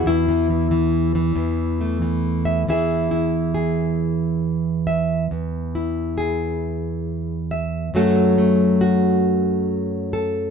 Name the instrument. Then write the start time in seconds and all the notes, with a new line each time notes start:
nylon-string guitar
Already playing: E3
0.06 E2 E4
0.28 E3
0.50 E3
0.71 E3
1.15 E3
1.36 E2
1.81 A3
2.02 E3
2.45 E5
2.67 E2 E3 E4 G#4 E5
3.11 E4
3.54 G#4
4.87 E5
5.31 E2
5.75 E4
6.18 G#4
7.51 E5
7.94 F#2 F#3 A3 F#4 A4
8.38 A3
8.81 F#4
10.13 A4